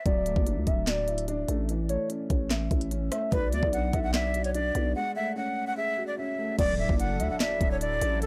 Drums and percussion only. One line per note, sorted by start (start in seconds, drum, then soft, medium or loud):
0.06 kick loud
0.06 closed hi-hat medium
0.26 closed hi-hat medium
0.36 kick loud
0.47 closed hi-hat medium
0.67 kick medium
0.67 closed hi-hat medium
0.87 snare loud
0.87 clap medium
0.87 closed hi-hat medium
1.08 closed hi-hat medium
1.18 closed hi-hat medium
1.28 closed hi-hat medium
1.48 closed hi-hat medium
1.69 closed hi-hat medium
1.89 closed hi-hat medium
2.10 closed hi-hat medium
2.30 kick medium
2.30 closed hi-hat medium
2.50 snare loud
2.50 clap medium
2.50 closed hi-hat medium
2.71 kick loud
2.71 closed hi-hat medium
2.81 closed hi-hat medium
2.91 closed hi-hat medium
3.12 cross-stick medium
3.12 closed hi-hat medium
3.32 kick loud
3.32 closed hi-hat medium
3.53 closed hi-hat medium
3.63 kick medium
3.73 closed hi-hat medium
3.93 kick medium
3.93 closed hi-hat medium
4.14 snare loud
4.14 clap medium
4.14 closed hi-hat medium
4.34 closed hi-hat medium
4.44 closed hi-hat medium
4.55 closed hi-hat medium
4.75 closed hi-hat medium
6.59 kick loud
6.59 closed hi-hat medium
6.59 crash loud
6.89 kick loud
7.00 closed hi-hat medium
7.20 closed hi-hat medium
7.40 snare loud
7.40 clap medium
7.40 closed hi-hat medium
7.61 kick loud
7.61 closed hi-hat medium
7.81 closed hi-hat medium
8.01 closed hi-hat medium
8.22 closed hi-hat medium